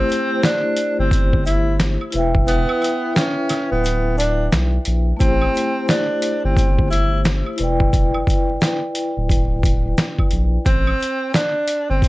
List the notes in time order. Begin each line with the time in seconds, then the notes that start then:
Already playing: A3 C4 E4 G4 C5
0.09 closed hi-hat, shaker
0.43 D4, snare, closed hi-hat, shaker
0.77 closed hi-hat, shaker
0.99 G1 C4
1.11 kick, closed hi-hat, shaker
1.33 kick
1.45 E4, closed hi-hat, shaker
1.79 snare, closed hi-hat, shaker
2.01 high woodblock
2.11 E1 E4 B4, closed hi-hat, shaker
2.16 E5 G5
2.35 kick
2.47 B3, closed hi-hat, shaker
2.69 high woodblock
2.82 closed hi-hat, high woodblock, shaker
3.16 C#4, snare, closed hi-hat, shaker
3.49 snare, closed hi-hat, high woodblock, shaker
3.72 D1 B3
3.84 closed hi-hat, shaker
4.18 D4, closed hi-hat, shaker
4.52 B1, snare, closed hi-hat, shaker
4.85 A#1, closed hi-hat, shaker
5.17 A3 C4 E4, kick, shaker
5.21 A1 G4 C5, closed hi-hat
5.42 high woodblock
5.54 closed hi-hat, shaker
5.88 D4, snare, closed hi-hat, shaker
6.22 closed hi-hat, shaker
6.45 G1 C4
6.57 kick, closed hi-hat, shaker
6.79 kick
6.90 E4, closed hi-hat, shaker
7.25 snare, closed hi-hat, shaker
7.46 high woodblock
7.56 E1 E4 B4, closed hi-hat, shaker
7.61 D5 G5
7.80 kick
7.93 kick, closed hi-hat, shaker
8.14 high woodblock
8.27 kick, closed hi-hat, shaker
8.61 snare, closed hi-hat, shaker
8.95 closed hi-hat, shaker
9.17 D1
9.29 kick, closed hi-hat, shaker
9.63 kick, closed hi-hat, shaker
9.98 snare, closed hi-hat, shaker
10.19 kick, high woodblock
10.31 A#1, closed hi-hat, shaker
10.66 A1 C4, kick, closed hi-hat, shaker
10.87 high woodblock
11.00 closed hi-hat, shaker
11.34 D4, snare, closed hi-hat, shaker
11.68 closed hi-hat, shaker
11.90 G1 C4
12.02 kick, closed hi-hat, shaker